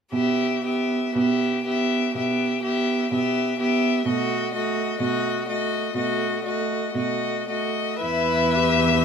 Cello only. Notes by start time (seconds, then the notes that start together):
0.13 B2
1.15 B2
2.15 B2
3.12 B2
4.06 B2
5.00 B2
5.95 B2
6.95 B2
8.03 E2